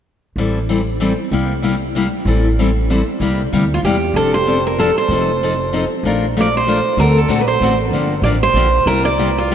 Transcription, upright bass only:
0.36 A1
1.31 C2
2.25 A1
3.20 C2
3.52 D2
3.83 E2
4.14 F1
5.09 F1
6.03 A#1
6.97 D2
7.29 A#1
7.60 A1
7.91 G1
8.22 A1
8.54 A#1
8.86 C2

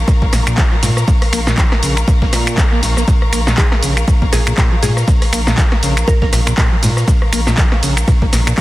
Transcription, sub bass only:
0.22 A#1
0.33 A#1
0.83 A#2
1.33 A#1
1.83 A#1
2.22 A#1
2.33 A#2
2.83 A#1
3.33 A#1
3.83 A#1
4.22 A#1
4.33 A#1
4.83 A#2
5.33 A#1
5.83 A#1
6.22 A#1
6.33 A#1
6.83 A#2
7.33 A#1
7.83 A#1
8.22 A#1
8.33 A#1

